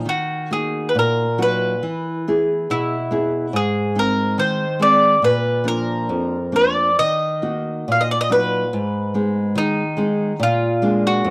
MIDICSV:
0, 0, Header, 1, 3, 480
1, 0, Start_track
1, 0, Key_signature, -6, "minor"
1, 0, Tempo, 886263
1, 40, Time_signature, 2, 2, 24, 8
1, 999, Tempo, 846262
1, 2919, Tempo, 875912
1, 4359, Tempo, 849858
1, 6305, End_track
2, 0, Start_track
2, 0, Title_t, "Mandolin"
2, 0, Program_c, 0, 25
2, 48, Note_on_c, 0, 66, 67
2, 283, Note_off_c, 0, 66, 0
2, 285, Note_on_c, 0, 68, 60
2, 482, Note_on_c, 0, 71, 46
2, 491, Note_off_c, 0, 68, 0
2, 522, Note_off_c, 0, 71, 0
2, 535, Note_on_c, 0, 70, 64
2, 769, Note_off_c, 0, 70, 0
2, 771, Note_on_c, 0, 71, 67
2, 1490, Note_on_c, 0, 64, 60
2, 1511, Note_off_c, 0, 71, 0
2, 1971, Note_off_c, 0, 64, 0
2, 1973, Note_on_c, 0, 68, 75
2, 2212, Note_off_c, 0, 68, 0
2, 2217, Note_on_c, 0, 70, 77
2, 2443, Note_off_c, 0, 70, 0
2, 2445, Note_on_c, 0, 72, 70
2, 2687, Note_off_c, 0, 72, 0
2, 2689, Note_on_c, 0, 74, 76
2, 2925, Note_off_c, 0, 74, 0
2, 2927, Note_on_c, 0, 71, 76
2, 3163, Note_off_c, 0, 71, 0
2, 3165, Note_on_c, 0, 70, 72
2, 3645, Note_off_c, 0, 70, 0
2, 3647, Note_on_c, 0, 74, 70
2, 3881, Note_off_c, 0, 74, 0
2, 3884, Note_on_c, 0, 75, 81
2, 4393, Note_on_c, 0, 77, 60
2, 4414, Note_off_c, 0, 75, 0
2, 4444, Note_on_c, 0, 75, 61
2, 4446, Note_off_c, 0, 77, 0
2, 4497, Note_off_c, 0, 75, 0
2, 4503, Note_on_c, 0, 74, 69
2, 4552, Note_off_c, 0, 74, 0
2, 4557, Note_on_c, 0, 75, 75
2, 4605, Note_off_c, 0, 75, 0
2, 4621, Note_on_c, 0, 71, 74
2, 5331, Note_on_c, 0, 63, 71
2, 5350, Note_off_c, 0, 71, 0
2, 5810, Note_off_c, 0, 63, 0
2, 5812, Note_on_c, 0, 65, 76
2, 6170, Note_off_c, 0, 65, 0
2, 6172, Note_on_c, 0, 66, 70
2, 6305, Note_off_c, 0, 66, 0
2, 6305, End_track
3, 0, Start_track
3, 0, Title_t, "Nylon-string guitar"
3, 0, Program_c, 1, 24
3, 30, Note_on_c, 1, 51, 46
3, 274, Note_on_c, 1, 58, 37
3, 276, Note_on_c, 1, 63, 33
3, 279, Note_on_c, 1, 66, 37
3, 503, Note_off_c, 1, 51, 0
3, 514, Note_on_c, 1, 46, 54
3, 662, Note_off_c, 1, 58, 0
3, 663, Note_off_c, 1, 63, 0
3, 663, Note_off_c, 1, 66, 0
3, 749, Note_on_c, 1, 54, 39
3, 749, Note_on_c, 1, 63, 36
3, 752, Note_on_c, 1, 66, 42
3, 944, Note_off_c, 1, 54, 0
3, 944, Note_off_c, 1, 63, 0
3, 945, Note_off_c, 1, 66, 0
3, 980, Note_off_c, 1, 46, 0
3, 989, Note_on_c, 1, 52, 49
3, 1244, Note_on_c, 1, 59, 40
3, 1247, Note_on_c, 1, 64, 38
3, 1249, Note_on_c, 1, 68, 43
3, 1465, Note_off_c, 1, 52, 0
3, 1485, Note_on_c, 1, 47, 58
3, 1627, Note_off_c, 1, 59, 0
3, 1629, Note_off_c, 1, 64, 0
3, 1630, Note_off_c, 1, 68, 0
3, 1715, Note_on_c, 1, 59, 38
3, 1721, Note_on_c, 1, 64, 38
3, 1721, Note_on_c, 1, 68, 47
3, 1909, Note_off_c, 1, 59, 0
3, 1911, Note_off_c, 1, 68, 0
3, 1913, Note_off_c, 1, 64, 0
3, 1946, Note_off_c, 1, 47, 0
3, 1956, Note_on_c, 1, 44, 57
3, 2196, Note_on_c, 1, 56, 38
3, 2199, Note_on_c, 1, 60, 37
3, 2199, Note_on_c, 1, 63, 43
3, 2422, Note_off_c, 1, 44, 0
3, 2437, Note_on_c, 1, 51, 54
3, 2581, Note_off_c, 1, 56, 0
3, 2582, Note_off_c, 1, 63, 0
3, 2583, Note_off_c, 1, 60, 0
3, 2672, Note_on_c, 1, 56, 42
3, 2675, Note_on_c, 1, 60, 34
3, 2679, Note_on_c, 1, 63, 42
3, 2868, Note_off_c, 1, 56, 0
3, 2868, Note_off_c, 1, 60, 0
3, 2871, Note_off_c, 1, 63, 0
3, 2904, Note_off_c, 1, 51, 0
3, 2915, Note_on_c, 1, 46, 51
3, 3143, Note_on_c, 1, 53, 38
3, 3146, Note_on_c, 1, 58, 34
3, 3149, Note_on_c, 1, 62, 39
3, 3377, Note_off_c, 1, 46, 0
3, 3391, Note_on_c, 1, 41, 49
3, 3533, Note_off_c, 1, 53, 0
3, 3534, Note_off_c, 1, 58, 0
3, 3536, Note_off_c, 1, 62, 0
3, 3627, Note_on_c, 1, 53, 34
3, 3628, Note_on_c, 1, 58, 33
3, 3631, Note_on_c, 1, 62, 39
3, 3825, Note_off_c, 1, 53, 0
3, 3825, Note_off_c, 1, 58, 0
3, 3827, Note_off_c, 1, 62, 0
3, 3863, Note_off_c, 1, 41, 0
3, 3887, Note_on_c, 1, 51, 51
3, 4120, Note_on_c, 1, 58, 34
3, 4123, Note_on_c, 1, 63, 34
3, 4124, Note_on_c, 1, 66, 39
3, 4349, Note_off_c, 1, 51, 0
3, 4371, Note_on_c, 1, 46, 58
3, 4504, Note_off_c, 1, 58, 0
3, 4505, Note_off_c, 1, 63, 0
3, 4506, Note_off_c, 1, 66, 0
3, 4607, Note_on_c, 1, 54, 39
3, 4614, Note_on_c, 1, 63, 35
3, 4616, Note_on_c, 1, 66, 43
3, 4797, Note_off_c, 1, 54, 0
3, 4802, Note_off_c, 1, 63, 0
3, 4802, Note_off_c, 1, 66, 0
3, 4834, Note_off_c, 1, 46, 0
3, 4852, Note_on_c, 1, 44, 54
3, 5085, Note_on_c, 1, 56, 40
3, 5089, Note_on_c, 1, 59, 35
3, 5089, Note_on_c, 1, 63, 44
3, 5310, Note_off_c, 1, 44, 0
3, 5317, Note_on_c, 1, 51, 60
3, 5465, Note_off_c, 1, 56, 0
3, 5466, Note_off_c, 1, 59, 0
3, 5467, Note_off_c, 1, 63, 0
3, 5550, Note_on_c, 1, 56, 44
3, 5555, Note_on_c, 1, 59, 42
3, 5558, Note_on_c, 1, 63, 50
3, 5745, Note_off_c, 1, 56, 0
3, 5748, Note_off_c, 1, 59, 0
3, 5750, Note_off_c, 1, 63, 0
3, 5782, Note_off_c, 1, 51, 0
3, 5792, Note_on_c, 1, 46, 58
3, 6032, Note_on_c, 1, 56, 44
3, 6035, Note_on_c, 1, 58, 42
3, 6038, Note_on_c, 1, 62, 49
3, 6262, Note_off_c, 1, 46, 0
3, 6272, Note_on_c, 1, 41, 65
3, 6305, Note_off_c, 1, 41, 0
3, 6305, Note_off_c, 1, 56, 0
3, 6305, Note_off_c, 1, 58, 0
3, 6305, Note_off_c, 1, 62, 0
3, 6305, End_track
0, 0, End_of_file